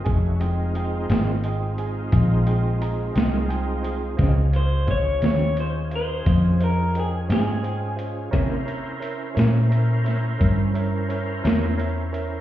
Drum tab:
HH |xxxxxxxxxxxx|xxxxxxxxxxxx|xxxxxxxxxxxx|
SD |---o-----o--|---o--o--o--|---o-o---o--|
BD |o-----o-----|o-o---o-----|o-----o-----|